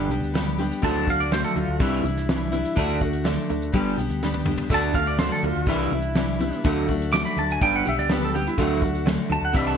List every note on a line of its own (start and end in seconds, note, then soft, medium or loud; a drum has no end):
0.08 0.19 B1 medium
0.08 0.33 G2 medium
0.08 0.33 D3 medium
0.08 0.35 D4 medium
0.08 0.35 G4 medium
0.08 closed hi-hat medium
0.12 0.32 G3 soft
0.12 0.34 B3 soft
0.20 0.70 D2 medium
0.20 closed hi-hat medium
0.33 0.57 G2 medium
0.33 0.57 D3 medium
0.33 0.58 G3 medium
0.33 0.59 B3 medium
0.33 0.59 D4 medium
0.33 0.57 G4 medium
0.33 snare loud
0.33 closed hi-hat medium
0.58 0.81 G2 medium
0.58 0.81 D3 medium
0.58 0.84 B3 medium
0.58 0.83 D4 medium
0.58 0.83 G4 medium
0.58 closed hi-hat medium
0.63 0.82 G3 medium
0.71 closed hi-hat medium
0.82 1.42 D2 medium
0.82 1.07 D3 medium
0.82 1.06 D3 medium
0.82 1.06 F#3 medium
0.82 1.08 A3 medium
0.82 1.06 A3 loud
0.82 1.08 D4 medium
0.82 1.07 F#4 medium
0.82 1.07 A5 loud
0.82 kick loud
0.82 closed hi-hat medium
1.07 1.29 D3 medium
1.07 1.30 F#3 medium
1.07 1.32 A3 soft
1.07 1.32 D4 medium
1.07 1.32 F#4 medium
1.07 1.21 F5 loud
1.07 kick medium
1.07 closed hi-hat medium
1.20 1.32 D5 medium
1.20 closed hi-hat medium
1.32 1.53 D3 medium
1.32 1.80 D3 medium
1.32 1.54 F#3 medium
1.32 1.81 A3 medium
1.32 1.81 D4 medium
1.32 1.81 F#4 medium
1.32 1.44 C5 medium
1.32 snare loud
1.32 closed hi-hat medium
1.44 1.56 A4 medium
1.56 1.66 D2 loud
1.56 1.78 D3 medium
1.56 1.78 F#3 medium
1.56 1.80 F4 medium
1.56 closed hi-hat medium
1.68 1.78 D2 medium
1.79 2.00 C2 medium
1.79 2.04 C3 medium
1.79 2.03 C3 medium
1.79 2.03 E3 medium
1.79 2.05 E3 medium
1.79 2.03 G3 loud
1.79 2.05 G3 medium
1.79 2.05 D4 medium
1.79 2.74 E4 loud
1.79 2.04 E4 medium
1.79 kick loud
1.79 closed hi-hat medium
2.04 2.63 C2 medium
2.04 2.26 C3 medium
2.04 2.26 E3 medium
2.04 2.30 D4 soft
2.04 2.29 E4 medium
2.04 closed hi-hat medium
2.08 2.30 G3 soft
2.17 snare soft
2.17 closed hi-hat medium
2.29 2.51 C3 medium
2.29 2.53 E3 medium
2.29 2.51 E3 medium
2.29 2.54 G3 medium
2.29 2.53 D4 medium
2.29 snare loud
2.29 closed hi-hat medium
2.33 2.51 E4 medium
2.52 2.75 C3 medium
2.52 2.75 E3 medium
2.52 2.78 G3 soft
2.52 2.77 D4 medium
2.52 2.77 E4 medium
2.52 closed hi-hat medium
2.65 closed hi-hat medium
2.76 3.36 D2 loud
2.76 2.99 D3 medium
2.76 3.01 D3 medium
2.76 3.00 A3 loud
2.76 3.02 A3 medium
2.76 3.00 D4 loud
2.76 3.02 D4 loud
2.76 3.00 F#4 loud
2.76 kick loud
2.76 closed hi-hat medium
3.01 3.23 D3 medium
3.01 3.23 A3 medium
3.01 3.24 D4 medium
3.01 3.25 F#4 medium
3.01 kick medium
3.01 closed hi-hat medium
3.13 closed hi-hat medium
3.24 3.72 D3 medium
3.24 3.47 D3 medium
3.24 3.73 A3 medium
3.24 3.47 A3 medium
3.24 3.74 D4 medium
3.24 3.74 F#4 medium
3.24 snare loud
3.24 closed hi-hat medium
3.50 3.70 D2 medium
3.50 3.72 D3 medium
3.50 3.72 A3 medium
3.50 closed hi-hat medium
3.62 closed hi-hat medium
3.72 3.94 G1 medium
3.72 3.97 G2 medium
3.72 3.98 D3 medium
3.72 3.97 D3 medium
3.72 3.98 G3 medium
3.72 3.97 G3 medium
3.72 3.97 B3 medium
3.72 3.97 D4 medium
3.72 3.95 G4 medium
3.72 kick loud
3.72 closed hi-hat medium
3.96 4.08 B1 medium
3.96 4.20 G2 medium
3.96 4.20 D3 medium
3.96 4.21 G3 soft
3.96 4.23 B3 medium
3.96 4.22 D4 medium
3.96 4.21 G4 medium
3.96 closed hi-hat medium
4.10 4.59 D2 medium
4.10 closed hi-hat medium
4.23 4.44 G2 medium
4.23 4.45 D3 medium
4.23 4.47 G3 medium
4.23 4.46 B3 medium
4.23 4.45 D4 medium
4.23 4.45 G4 medium
4.23 snare medium
4.34 high tom medium
4.46 4.69 G2 medium
4.46 4.69 D3 medium
4.46 4.69 G3 soft
4.46 4.69 B3 soft
4.46 4.70 D4 medium
4.46 4.70 G4 medium
4.46 mid tom medium
4.58 floor tom medium
4.69 5.29 D2 loud
4.69 4.94 D3 medium
4.69 4.93 D3 medium
4.69 4.94 A3 medium
4.69 4.94 D4 medium
4.69 4.94 D4 loud
4.69 4.92 F#4 medium
4.69 kick loud
4.69 closed hi-hat medium
4.74 4.96 A5 medium
4.93 5.17 D3 medium
4.93 5.17 A3 medium
4.93 5.18 A3 soft
4.93 5.19 D4 medium
4.93 5.18 F#4 medium
4.93 5.07 F5 loud
4.93 kick medium
4.93 closed hi-hat medium
5.06 5.19 D5 medium
5.06 closed hi-hat medium
5.18 5.67 D3 medium
5.18 5.41 D3 medium
5.18 5.68 A3 medium
5.18 5.41 A3 medium
5.18 5.69 D4 medium
5.18 5.69 F#4 medium
5.18 5.31 C5 medium
5.18 snare loud
5.18 closed hi-hat medium
5.32 5.43 A4 medium
5.42 5.53 D2 loud
5.42 5.65 D3 medium
5.42 5.66 A3 medium
5.42 5.67 F4 medium
5.42 closed hi-hat medium
5.56 5.66 D2 medium
5.66 5.87 C2 medium
5.66 5.90 C3 medium
5.66 5.92 C3 medium
5.66 5.90 E3 loud
5.66 5.92 E3 medium
5.66 5.91 G3 loud
5.66 5.92 G3 medium
5.66 6.62 E4 medium
5.66 5.91 E4 medium
5.66 kick loud
5.66 closed hi-hat medium
5.70 5.93 D4 medium
5.90 6.50 C2 medium
5.90 6.14 C3 medium
5.90 6.14 E3 medium
5.90 6.16 E4 soft
5.90 closed hi-hat medium
5.95 6.14 G3 soft
5.95 6.15 D4 soft
6.02 closed hi-hat medium
6.15 6.38 C3 medium
6.15 6.40 E3 medium
6.15 6.38 E3 medium
6.15 6.40 G3 medium
6.15 6.39 D4 medium
6.15 6.38 E4 medium
6.15 snare loud
6.15 closed hi-hat medium
6.39 6.62 C3 medium
6.39 6.62 E3 medium
6.39 6.65 G3 soft
6.39 6.64 D4 medium
6.39 6.64 E4 medium
6.39 closed hi-hat medium
6.52 closed hi-hat medium
6.64 7.23 D2 loud
6.64 6.88 D3 loud
6.64 6.87 D3 loud
6.64 6.88 F#3 loud
6.64 6.89 A3 loud
6.64 6.88 A3 medium
6.64 6.88 D4 medium
6.64 6.87 F#4 loud
6.64 kick loud
6.64 closed hi-hat medium
6.88 7.10 D3 medium
6.88 7.11 F#3 medium
6.88 7.11 A3 medium
6.88 7.13 D4 medium
6.88 7.12 F#4 medium
6.88 kick medium
6.88 closed hi-hat medium
7.02 closed hi-hat medium
7.12 7.60 D3 medium
7.12 7.35 D3 medium
7.12 7.35 F#3 medium
7.12 7.61 A3 medium
7.12 7.61 D4 medium
7.12 7.62 F#4 medium
7.12 7.24 D6 loud
7.12 snare loud
7.12 closed hi-hat medium
7.25 7.37 B5 medium
7.37 7.56 D2 loud
7.37 7.59 D3 medium
7.37 7.59 F#3 medium
7.37 7.50 A5 medium
7.37 closed hi-hat medium
7.51 7.62 G#5 medium
7.51 closed hi-hat medium
7.61 7.81 G1 medium
7.61 7.85 G2 medium
7.61 7.84 G2 loud
7.61 7.85 D3 medium
7.61 7.84 D3 medium
7.61 7.85 G3 medium
7.61 7.85 G3 loud
7.61 7.86 B3 medium
7.61 7.85 D4 medium
7.61 7.84 G4 medium
7.61 7.73 G5 loud
7.61 kick loud
7.61 closed hi-hat medium
7.76 7.86 F#5 medium
7.85 7.96 B1 medium
7.85 8.07 G2 medium
7.85 8.07 D3 medium
7.85 8.08 G3 soft
7.85 8.09 B3 soft
7.85 8.10 D4 medium
7.85 8.09 G4 soft
7.85 7.99 E5 medium
7.85 closed hi-hat medium
7.98 8.46 D2 medium
7.98 8.10 D5 loud
7.98 closed hi-hat medium
8.09 8.31 G2 medium
8.09 8.31 D3 medium
8.09 8.33 G3 medium
8.09 8.34 B3 medium
8.09 8.33 D4 medium
8.09 8.32 G4 medium
8.09 8.22 B4 medium
8.09 snare loud
8.09 closed hi-hat medium
8.24 8.35 A4 medium
8.33 8.56 G2 medium
8.33 8.56 D3 medium
8.33 8.57 G3 soft
8.33 8.58 B3 soft
8.33 8.58 D4 medium
8.33 8.57 G4 medium
8.33 8.46 G4 loud
8.33 closed hi-hat medium
8.47 8.58 E4 loud
8.47 closed hi-hat medium
8.58 9.16 D2 loud
8.58 8.80 D3 loud
8.58 8.82 D3 medium
8.58 8.81 F#3 loud
8.58 8.82 A3 medium
8.58 8.81 A3 loud
8.58 8.83 D4 medium
8.58 8.80 F#4 loud
8.58 9.06 F#4 loud
8.58 kick loud
8.58 closed hi-hat medium
8.82 9.04 D3 medium
8.82 9.04 F#3 medium
8.82 9.05 A3 soft
8.82 9.06 D4 soft
8.82 9.06 F#4 medium
8.82 kick medium
8.82 closed hi-hat medium
8.95 closed hi-hat medium
9.05 9.54 D3 medium
9.05 9.28 D3 medium
9.05 9.28 F#3 medium
9.05 9.54 A3 medium
9.05 9.56 D4 medium
9.05 9.55 F#4 medium
9.05 snare loud
9.05 closed hi-hat medium
9.30 9.39 D2 loud
9.30 9.51 D3 medium
9.30 9.52 F#3 medium
9.30 9.43 A5 medium
9.30 closed hi-hat medium
9.41 9.51 D2 loud
9.41 9.55 F#5 medium
9.53 9.74 C2 loud
9.53 9.76 C3 loud
9.53 9.77 C3 medium
9.53 9.77 E3 medium
9.53 9.77 G3 loud
9.53 9.77 G3 medium
9.53 9.77 D4 medium
9.53 9.67 E5 medium
9.53 kick loud
9.53 closed hi-hat medium
9.58 9.76 E4 medium
9.67 9.77 A5 medium